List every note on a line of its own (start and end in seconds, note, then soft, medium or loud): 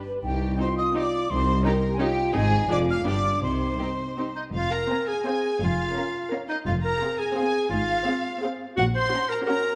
0.05 0.23 B4 medium
0.22 0.53 C2 medium
0.22 0.54 C2 medium
0.22 0.56 D#4 soft
0.22 0.58 G4 medium
0.22 0.57 G5 medium
0.59 0.67 C4 soft
0.59 0.67 D#4 soft
0.59 1.28 F4 medium
0.59 0.68 G4 soft
0.59 0.67 C5 medium
0.59 0.77 C6 medium
0.77 0.85 D#5 medium
0.77 0.94 D#6 medium
0.94 1.02 C4 medium
0.94 1.02 D#4 medium
0.94 1.03 G4 soft
0.94 1.30 D5 medium
0.94 1.29 D6 medium
1.30 1.59 C2 medium
1.30 1.65 D#4 medium
1.30 1.65 C5 medium
1.30 1.65 C6 medium
1.64 1.72 C#4 medium
1.64 1.72 D#4 medium
1.64 1.73 G4 medium
1.64 2.01 G4 medium
1.64 1.99 A#4 medium
1.64 1.70 A#5 medium
1.94 2.00 G#5 medium
1.99 2.07 C#4 medium
1.99 2.08 D#4 medium
1.99 2.35 F4 medium
1.99 2.34 G4 medium
1.99 2.08 G4 medium
1.99 2.36 G5 medium
2.33 2.65 G#1 medium
2.33 2.64 G#2 medium
2.33 2.43 C4 medium
2.33 2.70 D#4 medium
2.33 2.43 D#4 medium
2.33 2.41 G#4 medium
2.33 2.70 G#4 medium
2.33 2.69 G#5 medium
2.69 3.00 F1 medium
2.69 3.00 F2 medium
2.69 2.78 D4 medium
2.69 3.05 F4 medium
2.69 2.77 G#4 medium
2.69 2.78 D5 medium
2.69 2.76 D6 loud
2.89 3.07 F5 medium
2.89 2.95 F6 medium
3.05 3.37 G1 medium
3.05 3.36 G2 medium
3.05 3.13 B3 soft
3.05 3.13 D4 medium
3.05 3.43 D4 medium
3.05 3.15 G4 medium
3.05 3.43 D5 medium
3.05 3.42 D6 medium
3.42 3.73 C2 medium
3.42 3.74 C3 medium
3.42 4.33 D#4 soft
3.42 4.33 C5 medium
3.42 4.33 C6 medium
3.80 3.89 C4 soft
3.80 3.88 D#4 soft
3.80 3.88 G4 soft
4.18 4.26 C4 soft
4.18 4.26 D#4 soft
4.18 4.25 G4 soft
4.35 4.43 D#4 medium
4.35 4.44 D#5 soft
4.53 4.82 F1 medium
4.53 4.82 F2 medium
4.53 4.72 F4 medium
4.53 4.72 F5 medium
4.71 5.09 A#4 medium
4.71 5.07 A#5 medium
4.90 5.17 C4 medium
4.90 5.17 C5 medium
4.90 5.17 F5 medium
4.90 5.16 G#5 medium
5.08 5.25 G#4 medium
5.08 5.25 G#5 medium
5.25 5.52 C4 medium
5.25 5.60 G#4 medium
5.25 5.52 C5 medium
5.25 5.52 F5 medium
5.25 5.51 G#5 medium
5.25 5.61 G#5 medium
5.60 5.89 F1 medium
5.60 5.89 F2 medium
5.60 6.32 F4 medium
5.60 6.32 F5 medium
5.95 6.23 C#4 medium
5.95 6.23 A#4 soft
5.95 6.22 F5 medium
5.95 6.22 A#5 medium
6.30 6.58 C#4 medium
6.30 6.59 A#4 medium
6.30 6.57 F5 medium
6.30 6.57 A#5 medium
6.49 6.57 D#4 medium
6.49 6.56 D#5 medium
6.66 6.95 F1 medium
6.66 6.94 F2 medium
6.66 6.74 F4 medium
6.66 6.74 F5 medium
6.84 7.21 A#4 medium
6.84 7.19 A#5 medium
7.02 7.28 C4 medium
7.02 7.29 G#4 medium
7.02 7.28 F5 medium
7.02 7.28 C6 medium
7.19 7.35 G#4 medium
7.19 7.36 G#5 medium
7.36 7.63 C4 medium
7.36 7.69 G#4 medium
7.36 7.63 G#4 medium
7.36 7.63 F5 medium
7.36 7.72 G#5 medium
7.36 7.63 C6 medium
7.70 8.00 G#1 medium
7.70 8.00 G#2 medium
7.70 8.40 F4 medium
7.70 8.41 F5 medium
8.07 8.33 C4 medium
8.07 8.34 G#4 medium
8.07 8.34 F5 medium
8.07 8.34 C6 medium
8.42 8.69 C4 medium
8.42 8.68 G#4 medium
8.42 8.69 F5 medium
8.42 8.69 C6 medium
8.76 9.05 A#1 medium
8.76 9.05 A#2 medium
8.76 8.85 F#4 medium
8.76 8.85 F#5 medium
8.95 9.31 C5 loud
8.95 9.30 C6 medium
9.12 9.39 C#4 medium
9.12 9.39 F#4 medium
9.12 9.39 F#5 medium
9.12 9.39 A#5 medium
9.29 9.45 A#4 medium
9.29 9.37 A#5 medium
9.46 9.74 C#4 medium
9.46 9.74 F#4 medium
9.46 9.75 A#4 medium
9.46 9.75 F#5 medium
9.46 9.75 A#5 medium